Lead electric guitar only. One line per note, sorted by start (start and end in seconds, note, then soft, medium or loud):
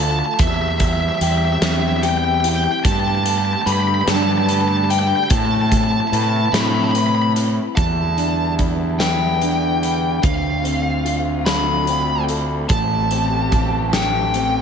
0.03 0.11 A5 medium
0.11 0.18 A5 medium
0.19 0.25 A5 medium
0.26 0.33 A5 medium
0.34 0.42 A5 medium
0.40 0.47 E5 medium
0.48 0.54 E5 medium
0.54 0.61 E5 medium
0.62 0.68 E5 medium
0.69 0.76 E5 medium
0.78 0.85 E5 medium
0.85 0.93 E5 medium
0.93 1.00 E5 medium
1.01 1.08 E5 medium
1.09 1.15 E5 medium
1.15 1.23 E5 medium
1.24 1.30 E5 medium
1.30 1.38 E5 medium
1.38 1.45 E5 medium
1.45 1.52 E5 medium
1.53 1.60 E5 medium
1.62 1.71 E5 medium
1.71 1.79 E5 medium
1.80 1.87 E5 medium
1.87 1.95 E5 medium
1.97 2.05 E5 medium
2.02 2.09 G5 medium
2.09 2.17 G5 medium
2.18 2.24 G5 medium
2.24 2.32 G5 medium
2.34 2.40 G5 medium
2.41 2.48 G5 medium
2.49 2.56 G5 medium
2.56 2.64 G5 medium
2.64 2.71 G5 medium
2.72 2.79 G5 medium
2.80 2.84 G5 medium
2.85 2.92 A5 medium
2.92 2.99 A5 medium
3.00 3.07 A5 medium
3.08 3.15 A5 medium
3.15 3.23 A5 medium
3.24 3.30 A5 medium
3.30 3.38 A5 medium
3.38 3.45 A5 medium
3.45 3.53 A5 medium
3.53 3.61 A5 medium
3.62 3.69 A5 medium
3.66 3.72 B5 medium
3.73 3.80 B5 medium
3.80 3.87 B5 medium
3.88 3.95 B5 medium
3.95 4.01 B5 medium
4.01 4.09 B5 medium
4.08 4.15 A5 medium
4.16 4.22 A5 medium
4.22 4.30 A5 medium
4.31 4.38 A5 medium
4.38 4.46 A5 medium
4.46 4.54 A5 medium
4.55 4.61 A5 medium
4.61 4.68 A5 medium
4.68 4.76 A5 medium
4.77 4.84 A5 medium
4.84 4.90 A5 medium
4.91 4.99 G5 medium
4.99 5.07 G5 medium
5.07 5.16 G5 medium
5.16 5.23 G5 medium
5.24 5.31 G5 medium
5.31 5.38 A5 medium
5.38 5.45 A5 medium
5.45 5.53 A5 medium
5.55 5.61 A5 medium
5.61 5.69 A5 medium
5.69 5.77 A5 medium
5.77 5.83 A5 medium
5.84 5.91 A5 medium
5.92 5.99 A5 medium
6.00 6.07 A5 medium
6.07 6.14 A5 medium
6.14 6.22 A5 medium
6.23 6.29 A5 medium
6.29 6.36 A5 medium
6.36 6.44 A5 medium
6.46 6.53 A5 medium
6.52 6.60 A5 medium
6.52 6.60 B5 loud
6.60 6.67 A5 medium
6.60 6.68 B5 medium
6.67 6.75 A5 medium
6.67 6.74 B5 medium
6.75 6.83 A5 medium
6.75 6.83 B5 medium
6.84 6.92 A5 medium
6.84 6.91 B5 medium
6.91 6.98 B5 medium
6.98 7.06 B5 medium
7.07 7.15 B5 medium
7.15 7.22 B5 medium
7.22 7.30 B5 medium
7.76 8.54 A5 medium
8.99 10.26 G5 medium
10.23 11.50 F5 medium
11.46 12.24 B5 medium
12.69 13.93 A5 medium
13.93 14.62 G5 medium